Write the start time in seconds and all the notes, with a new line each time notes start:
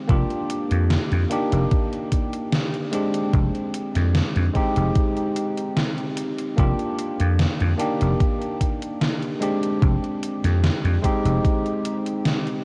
Already playing: G#3 C4 D#4 G4
0.08 F1 A#3 D4 F4 G4, kick, closed hi-hat
0.30 closed hi-hat
0.50 closed hi-hat
0.71 F2, closed hi-hat
0.90 snare, closed hi-hat
1.12 F2, closed hi-hat
1.29 A#3 D4 D#4 G4, closed hi-hat
1.52 F1, closed hi-hat
1.71 kick, closed hi-hat
1.93 closed hi-hat
2.12 kick, closed hi-hat
2.33 closed hi-hat
2.52 snare, closed hi-hat
2.74 closed hi-hat
2.92 G#3 C4 D4 G4, closed hi-hat
3.14 closed hi-hat
3.34 F1, kick, closed hi-hat
3.55 closed hi-hat
3.74 closed hi-hat
3.95 F2, snare, closed hi-hat
4.15 snare, closed hi-hat
4.36 F2, closed hi-hat
4.54 G#3 C4 D#4 G4, kick, closed hi-hat
4.76 F1, closed hi-hat
4.96 kick, closed hi-hat
5.17 closed hi-hat
5.36 closed hi-hat
5.58 closed hi-hat
5.77 snare, closed hi-hat
5.98 closed hi-hat
6.17 closed hi-hat
6.38 closed hi-hat
6.56 F1 A#3 D4 F4 G4, kick, closed hi-hat
6.79 closed hi-hat
6.99 closed hi-hat
7.20 F2, closed hi-hat
7.39 snare, closed hi-hat
7.60 F2, closed hi-hat
7.78 A#3 D4 D#4 G4, closed hi-hat
8.01 F1, closed hi-hat
8.20 kick, closed hi-hat
8.42 closed hi-hat
8.61 kick, closed hi-hat
8.82 closed hi-hat
9.01 snare, closed hi-hat
9.23 closed hi-hat
9.40 G#3 C4 D4 G4, closed hi-hat
9.63 closed hi-hat
9.82 F1, kick, closed hi-hat
10.04 closed hi-hat
10.23 closed hi-hat
10.44 F2, snare, closed hi-hat
10.64 snare, closed hi-hat
10.85 F2, closed hi-hat
11.02 G#3 C4 D#4 G4, kick, closed hi-hat
11.25 F1, closed hi-hat
11.45 kick, closed hi-hat
11.66 closed hi-hat
11.85 closed hi-hat
12.06 closed hi-hat
12.25 snare, closed hi-hat
12.46 closed hi-hat